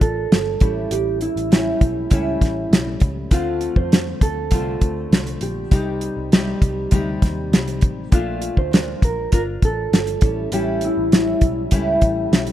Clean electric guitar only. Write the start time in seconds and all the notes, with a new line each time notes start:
0.02 A4
0.92 G4
1.22 E4
3.33 F4
3.77 C5
4.23 A4
5.43 G4
8.14 F4
8.58 C5
9.05 A#4
9.34 A#4
9.65 A4
10.54 G4
10.85 E4